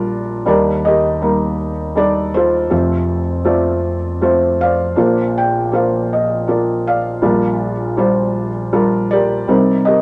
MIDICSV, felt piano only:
0, 0, Header, 1, 2, 480
1, 0, Start_track
1, 0, Key_signature, -2, "major"
1, 0, Tempo, 750939
1, 295, Time_signature, 3, 2, 24, 8
1, 6403, End_track
2, 0, Start_track
2, 0, Title_t, "Felt piano"
2, 0, Program_c, 0, 0
2, 0, Control_c, 0, 64, 127
2, 0, Note_on_c, 0, 34, 46
2, 0, Note_on_c, 0, 46, 43
2, 0, Note_on_c, 0, 55, 63
2, 0, Note_on_c, 0, 62, 59
2, 0, Note_on_c, 0, 65, 58
2, 0, Note_on_c, 0, 70, 64
2, 125, Note_off_c, 0, 55, 0
2, 126, Note_off_c, 0, 62, 0
2, 129, Note_off_c, 0, 65, 0
2, 130, Note_off_c, 0, 70, 0
2, 270, Note_off_c, 0, 34, 0
2, 270, Note_off_c, 0, 46, 0
2, 290, Note_on_c, 0, 55, 59
2, 293, Note_on_c, 0, 62, 56
2, 294, Note_on_c, 0, 51, 47
2, 295, Note_on_c, 0, 39, 49
2, 295, Note_on_c, 0, 63, 52
2, 296, Note_on_c, 0, 70, 65
2, 302, Control_c, 0, 64, 0
2, 304, Note_on_c, 0, 74, 73
2, 311, Note_off_c, 0, 70, 0
2, 315, Note_on_c, 0, 67, 53
2, 320, Note_on_c, 0, 70, 51
2, 432, Control_c, 0, 64, 127
2, 543, Note_on_c, 0, 75, 76
2, 546, Note_off_c, 0, 74, 0
2, 547, Note_off_c, 0, 70, 0
2, 548, Note_off_c, 0, 67, 0
2, 556, Note_on_c, 0, 70, 55
2, 557, Note_on_c, 0, 67, 58
2, 604, Note_off_c, 0, 55, 0
2, 606, Note_off_c, 0, 62, 0
2, 607, Note_off_c, 0, 63, 0
2, 773, Note_off_c, 0, 70, 0
2, 776, Note_on_c, 0, 55, 52
2, 778, Note_on_c, 0, 58, 47
2, 781, Note_on_c, 0, 63, 45
2, 783, Note_on_c, 0, 70, 52
2, 992, Note_off_c, 0, 75, 0
2, 1087, Note_off_c, 0, 55, 0
2, 1088, Note_off_c, 0, 58, 0
2, 1090, Note_off_c, 0, 63, 0
2, 1091, Note_off_c, 0, 70, 0
2, 1239, Note_off_c, 0, 67, 0
2, 1248, Note_on_c, 0, 55, 53
2, 1252, Note_on_c, 0, 62, 48
2, 1254, Note_on_c, 0, 63, 48
2, 1258, Note_on_c, 0, 69, 58
2, 1262, Note_on_c, 0, 74, 84
2, 1497, Note_on_c, 0, 72, 77
2, 1501, Note_off_c, 0, 69, 0
2, 1504, Note_off_c, 0, 74, 0
2, 1511, Note_on_c, 0, 69, 56
2, 1515, Note_on_c, 0, 65, 56
2, 1563, Note_off_c, 0, 55, 0
2, 1565, Note_off_c, 0, 62, 0
2, 1567, Note_off_c, 0, 63, 0
2, 1707, Note_off_c, 0, 51, 0
2, 1708, Note_off_c, 0, 39, 0
2, 1721, Note_off_c, 0, 65, 0
2, 1724, Note_on_c, 0, 57, 55
2, 1725, Note_off_c, 0, 72, 0
2, 1730, Note_on_c, 0, 41, 48
2, 1731, Note_on_c, 0, 29, 46
2, 1731, Note_on_c, 0, 60, 53
2, 1731, Note_on_c, 0, 65, 56
2, 1735, Note_on_c, 0, 72, 66
2, 1743, Control_c, 0, 64, 0
2, 1854, Control_c, 0, 64, 127
2, 2042, Note_off_c, 0, 57, 0
2, 2045, Note_off_c, 0, 60, 0
2, 2045, Note_off_c, 0, 65, 0
2, 2047, Note_off_c, 0, 72, 0
2, 2202, Note_on_c, 0, 57, 56
2, 2203, Note_on_c, 0, 60, 52
2, 2208, Note_on_c, 0, 65, 55
2, 2213, Note_on_c, 0, 74, 59
2, 2437, Note_off_c, 0, 69, 0
2, 2521, Note_off_c, 0, 57, 0
2, 2522, Note_off_c, 0, 60, 0
2, 2524, Note_off_c, 0, 65, 0
2, 2527, Note_off_c, 0, 74, 0
2, 2693, Note_on_c, 0, 57, 58
2, 2696, Note_on_c, 0, 60, 53
2, 2699, Note_on_c, 0, 65, 56
2, 2704, Note_on_c, 0, 72, 63
2, 2947, Note_on_c, 0, 77, 86
2, 2952, Note_off_c, 0, 72, 0
2, 2961, Note_on_c, 0, 72, 54
2, 2963, Note_on_c, 0, 74, 55
2, 3008, Note_off_c, 0, 57, 0
2, 3009, Note_off_c, 0, 60, 0
2, 3011, Note_off_c, 0, 65, 0
2, 3150, Note_off_c, 0, 29, 0
2, 3150, Note_off_c, 0, 41, 0
2, 3169, Note_on_c, 0, 58, 57
2, 3171, Note_off_c, 0, 72, 0
2, 3171, Note_on_c, 0, 62, 53
2, 3174, Note_on_c, 0, 34, 43
2, 3177, Note_on_c, 0, 46, 45
2, 3180, Note_on_c, 0, 65, 51
2, 3180, Note_on_c, 0, 72, 63
2, 3186, Control_c, 0, 64, 0
2, 3289, Control_c, 0, 64, 127
2, 3437, Note_on_c, 0, 79, 73
2, 3438, Note_off_c, 0, 77, 0
2, 3487, Note_off_c, 0, 58, 0
2, 3488, Note_off_c, 0, 62, 0
2, 3492, Note_off_c, 0, 65, 0
2, 3493, Note_off_c, 0, 72, 0
2, 3647, Note_off_c, 0, 74, 0
2, 3652, Note_off_c, 0, 79, 0
2, 3653, Note_on_c, 0, 58, 47
2, 3657, Note_on_c, 0, 62, 42
2, 3662, Note_on_c, 0, 65, 48
2, 3664, Note_on_c, 0, 72, 53
2, 3674, Note_on_c, 0, 77, 65
2, 3891, Note_off_c, 0, 77, 0
2, 3918, Note_on_c, 0, 75, 61
2, 3970, Note_off_c, 0, 58, 0
2, 3972, Note_off_c, 0, 62, 0
2, 3975, Note_off_c, 0, 65, 0
2, 3976, Note_off_c, 0, 72, 0
2, 4139, Note_on_c, 0, 62, 47
2, 4140, Note_on_c, 0, 58, 51
2, 4146, Note_on_c, 0, 65, 48
2, 4147, Note_on_c, 0, 74, 57
2, 4157, Note_off_c, 0, 75, 0
2, 4388, Note_off_c, 0, 74, 0
2, 4394, Note_on_c, 0, 77, 79
2, 4398, Note_on_c, 0, 74, 50
2, 4454, Note_off_c, 0, 58, 0
2, 4454, Note_off_c, 0, 62, 0
2, 4457, Note_off_c, 0, 65, 0
2, 4595, Note_off_c, 0, 34, 0
2, 4597, Note_off_c, 0, 46, 0
2, 4614, Note_on_c, 0, 55, 63
2, 4617, Note_on_c, 0, 65, 54
2, 4618, Note_on_c, 0, 34, 47
2, 4618, Note_on_c, 0, 62, 57
2, 4619, Note_on_c, 0, 46, 45
2, 4624, Note_on_c, 0, 70, 65
2, 4631, Control_c, 0, 64, 0
2, 4725, Control_c, 0, 64, 127
2, 4843, Note_off_c, 0, 77, 0
2, 4931, Note_off_c, 0, 55, 0
2, 4932, Note_off_c, 0, 65, 0
2, 4933, Note_off_c, 0, 62, 0
2, 4936, Note_off_c, 0, 70, 0
2, 5084, Note_off_c, 0, 74, 0
2, 5095, Note_on_c, 0, 55, 63
2, 5096, Note_on_c, 0, 62, 54
2, 5097, Note_on_c, 0, 65, 52
2, 5103, Note_on_c, 0, 72, 69
2, 5411, Note_off_c, 0, 55, 0
2, 5412, Note_off_c, 0, 62, 0
2, 5412, Note_off_c, 0, 65, 0
2, 5415, Note_off_c, 0, 72, 0
2, 5577, Note_on_c, 0, 62, 57
2, 5578, Note_on_c, 0, 55, 65
2, 5579, Note_on_c, 0, 65, 59
2, 5586, Note_on_c, 0, 70, 69
2, 5821, Note_on_c, 0, 74, 83
2, 5826, Note_off_c, 0, 70, 0
2, 5833, Note_on_c, 0, 67, 60
2, 5836, Note_on_c, 0, 70, 56
2, 5890, Note_off_c, 0, 62, 0
2, 5891, Note_off_c, 0, 55, 0
2, 5891, Note_off_c, 0, 65, 0
2, 6031, Note_off_c, 0, 34, 0
2, 6031, Note_off_c, 0, 46, 0
2, 6056, Note_off_c, 0, 70, 0
2, 6056, Note_on_c, 0, 55, 59
2, 6061, Note_on_c, 0, 48, 50
2, 6062, Note_on_c, 0, 36, 48
2, 6063, Note_on_c, 0, 60, 54
2, 6063, Note_on_c, 0, 63, 56
2, 6066, Note_on_c, 0, 70, 67
2, 6068, Control_c, 0, 64, 0
2, 6191, Control_c, 0, 64, 127
2, 6296, Note_off_c, 0, 67, 0
2, 6297, Note_on_c, 0, 75, 84
2, 6299, Note_off_c, 0, 70, 0
2, 6306, Note_on_c, 0, 67, 53
2, 6308, Note_on_c, 0, 70, 58
2, 6311, Note_off_c, 0, 74, 0
2, 6368, Note_off_c, 0, 55, 0
2, 6371, Note_off_c, 0, 60, 0
2, 6371, Note_off_c, 0, 63, 0
2, 6403, Note_off_c, 0, 36, 0
2, 6403, Note_off_c, 0, 48, 0
2, 6403, Note_off_c, 0, 67, 0
2, 6403, Note_off_c, 0, 70, 0
2, 6403, Note_off_c, 0, 75, 0
2, 6403, End_track
0, 0, End_of_file